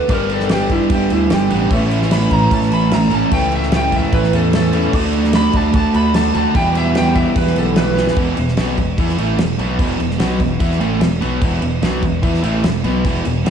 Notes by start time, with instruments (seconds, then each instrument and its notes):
Already playing: steel-string acoustic guitar A3, electric slide guitar B4
0.09 fingered electric bass G1, overdriven electric guitar G2 D3 G3 B3 D4, steel-string acoustic guitar G2 D3 G3 B3 D4 G4, honky-tonk piano D4 G4 B4 D5, electric slide guitar A#4, kick, crash
0.29 electric slide guitar A4, crash
0.40 snare
0.49 steel-string acoustic guitar G2 D3 G3 B3 D4 G4, honky-tonk piano D4 G4 B4 D5, electric slide guitar G4, snare, crash
0.70 electric slide guitar E4, kick, crash
0.90 fingered electric bass G1, steel-string acoustic guitar G3 B3 D4 G4, honky-tonk piano D4 G4 B4 E5, electric slide guitar G4, kick, crash
1.10 fingered electric bass D2, steel-string acoustic guitar G3 B3 D4 G4, electric slide guitar E4, crash
1.30 fingered electric bass G1, steel-string acoustic guitar G2 D3 G3 B3 D4 G4, honky-tonk piano D4 G4 B4 D5, electric slide guitar G4, snare, crash
1.50 fingered electric bass A1, overdriven electric guitar G2 D3 G3 B3 D4, steel-string acoustic guitar G3 B3 D4 G4, crash
1.70 fingered electric bass A1, overdriven electric guitar A2 E3 A3 C#4 E4, steel-string acoustic guitar A2 E3 B3 C#4, honky-tonk piano E4 A4 B4 C#5, kick, crash
1.74 steel-string acoustic guitar E4
1.91 crash
2.02 snare
2.11 steel-string acoustic guitar A2 E3 B3 C#4 E4, honky-tonk piano E4 A4 B4 C#5, electric slide guitar B5, snare, crash
2.31 fingered electric bass A1, electric slide guitar A#5, kick, crash
2.51 fingered electric bass A1, steel-string acoustic guitar E3 B3 C#4 E4, honky-tonk piano E4 A4 B4 C#5, electric slide guitar A5, kick, crash
2.62 snare
2.71 fingered electric bass A1, steel-string acoustic guitar B3 C#4 E4, electric slide guitar B5, crash
2.91 steel-string acoustic guitar A2 E3 B3 C#4 E4, honky-tonk piano E4 A4 B4 E5, electric slide guitar A#5, snare, crash
3.10 fingered electric bass A1, overdriven electric guitar A2 E3 A3 C#4 E4, steel-string acoustic guitar C#4 E4, crash
3.15 steel-string acoustic guitar B3, electric slide guitar A5
3.31 fingered electric bass C#2, overdriven electric guitar A2 E3 A3 C#4 E4, steel-string acoustic guitar A2 E3 B3 C#4 E4, honky-tonk piano E4 A4 B4 C#5, electric slide guitar G5, kick, crash
3.52 electric slide guitar E5, crash
3.63 snare
3.72 steel-string acoustic guitar A2 E3 B3 C#4 E4, honky-tonk piano E4 A4 B4 C#5, snare, crash
3.76 electric slide guitar G5
3.92 kick, crash
3.96 electric slide guitar E5
4.13 fingered electric bass A1, steel-string acoustic guitar E3 B3 C#4 E4, honky-tonk piano E4 A4 B4 C#5, electric slide guitar B4, kick, crash
4.24 snare
4.33 fingered electric bass E2, steel-string acoustic guitar B3 C#4 E4, electric slide guitar A4, crash
4.53 steel-string acoustic guitar A2 E3 B3 C#4 E4, honky-tonk piano E4 A4 B4 C#5, electric slide guitar A4, snare, crash
4.73 overdriven electric guitar A2 E3 A3 C#4 E4, steel-string acoustic guitar B3 C#4 E4, crash
4.93 fingered electric bass D2, overdriven electric guitar D3 A3 D4 F#4, steel-string acoustic guitar D3 A3 D4 F#4, honky-tonk piano D4 F#4 A4 D5, kick, crash
5.13 crash
5.24 snare
5.33 steel-string acoustic guitar D3 A3 D4 F#4, honky-tonk piano D4 F#4 A4 D5, electric slide guitar B5, snare, crash
5.53 fingered electric bass D2, electric slide guitar A5, kick, crash
5.73 fingered electric bass D2, steel-string acoustic guitar D3 A3 D4 F#4, honky-tonk piano D4 F#4 A4 D5, electric slide guitar A5, kick, crash
5.94 fingered electric bass D2, steel-string acoustic guitar A3 D4 F#4, electric slide guitar B5, crash
6.13 steel-string acoustic guitar D3 A3 D4 F#4, honky-tonk piano D4 F#4 A4 D5, electric slide guitar A5, snare, crash
6.34 fingered electric bass D2, overdriven electric guitar D3 A3 D4 F#4, steel-string acoustic guitar A3 D4 F#4, electric slide guitar A5, crash
6.54 steel-string acoustic guitar E2 B2 E3 G3 B3 G4, overdriven electric guitar E2 B2 E3 G3 B3 E4, fingered electric bass E2, honky-tonk piano E4 G4 B4 E5, electric slide guitar G5, kick, crash
6.75 electric slide guitar E5, crash
6.95 steel-string acoustic guitar E2 B2 E3 G3 B3 G4, honky-tonk piano E4 G4 B4 E5, electric slide guitar G5, snare, crash
7.16 electric slide guitar E5, kick, crash
7.35 fingered electric bass E2, steel-string acoustic guitar E3 G3 B3 G4, honky-tonk piano E4 G4 B4 E5, electric slide guitar B4, kick, crash
7.47 snare
7.56 fingered electric bass B1, steel-string acoustic guitar E3 G3 B3 G4, electric slide guitar A4, crash
7.76 steel-string acoustic guitar E2 B2 E3 G3 B3 G4, honky-tonk piano E4 G4 B4 E5, electric slide guitar B4, snare, crash
7.95 overdriven electric guitar E3 G3 B3 E4, steel-string acoustic guitar E3 G3 B3 G4, snare
8.07 snare
8.16 fingered electric bass E1, overdriven electric guitar E2 B2 E3, kick, crash
8.37 fingered electric bass E1, overdriven electric guitar E2 B2, crash
8.48 snare
8.57 fingered electric bass B1, overdriven electric guitar B2 F#3 B3, snare, crash
8.78 fingered electric bass E1, overdriven electric guitar E2 B2, kick, crash
8.98 fingered electric bass E2, overdriven electric guitar E3 B3 E4, kick, crash
9.09 snare
9.17 fingered electric bass A1, overdriven electric guitar A2 E3 A3, crash
9.38 fingered electric bass E1, overdriven electric guitar E2 B2, snare, crash
9.58 fingered electric bass B1, overdriven electric guitar B2 F#3 B3, crash
9.78 fingered electric bass E1, overdriven electric guitar E2 B2 E3, kick, crash
9.99 fingered electric bass E1, overdriven electric guitar E2 B2, crash
10.11 snare
10.18 fingered electric bass B1, overdriven electric guitar B2 F#3 B3, snare, crash
10.40 fingered electric bass E1, overdriven electric guitar E2 B2, kick, crash
10.60 fingered electric bass E2, overdriven electric guitar E3 B3 E4, kick, crash
10.71 snare
10.80 fingered electric bass A1, overdriven electric guitar A2 E3 A3, crash
11.00 fingered electric bass E1, overdriven electric guitar E2 B2, snare, crash
11.20 fingered electric bass B1, overdriven electric guitar B2 F#3 B3, crash
11.40 fingered electric bass E1, overdriven electric guitar E2 B2 E3, kick, crash
11.61 fingered electric bass E1, overdriven electric guitar E2 B2, crash
11.82 fingered electric bass B1, overdriven electric guitar B2 F#3 B3, snare, crash
12.02 fingered electric bass E1, overdriven electric guitar E2 B2, kick, crash
12.22 fingered electric bass E2, overdriven electric guitar E3 B3 E4, kick, crash
12.34 snare
12.43 fingered electric bass A1, overdriven electric guitar A2 E3 A3, crash
12.64 fingered electric bass E1, overdriven electric guitar E2 B2, snare, crash
12.84 fingered electric bass B1, overdriven electric guitar B2 F#3 B3, crash
13.04 fingered electric bass E1, overdriven electric guitar E2 B2 E3, kick, crash
13.25 fingered electric bass E1, overdriven electric guitar E2 B2, crash
13.45 fingered electric bass B1, overdriven electric guitar B2 F#3 B3, snare, crash